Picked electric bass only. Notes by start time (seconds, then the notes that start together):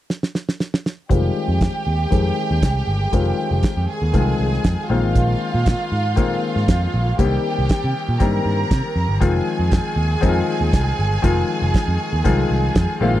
1.10 F1
1.48 F2
1.87 D#2
2.12 F2
2.51 D#2
2.62 C2
2.87 G1
3.13 F1
3.51 F1
3.77 F2
4.02 D#2
4.14 C2
4.39 C2
4.65 F2
4.90 A#1
5.03 G#1
5.16 A#1
5.54 A#2
5.92 G#2
6.18 A#2
6.56 G#2
6.68 F2
6.94 A#1
7.19 C2
7.59 C2
7.84 C3
8.09 A#2
8.21 G2
8.45 G2
8.71 C3
8.96 F2
9.09 G1
9.21 F1
9.59 F2
9.96 D#2
10.23 F2
10.61 D#2
10.73 C2
10.99 G1
11.24 F1
11.62 F1
11.75 muted picked electric bass stroke
11.88 F2
12.13 D#2
12.25 C2
12.50 C2
12.75 F2
13.01 A#1
13.14 G#1